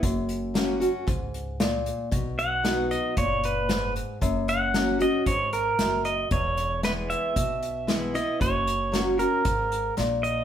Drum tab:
HH |xxxxxxxx|xxxxxxxx|xxxxxxxx|xxxxxxxx|
SD |--o---o-|--o---o-|--o---o-|--o---o-|
BD |o---o---|o---o---|o---o---|o---o---|

HH |xxxxxxxx|
SD |--o---o-|
BD |o---o---|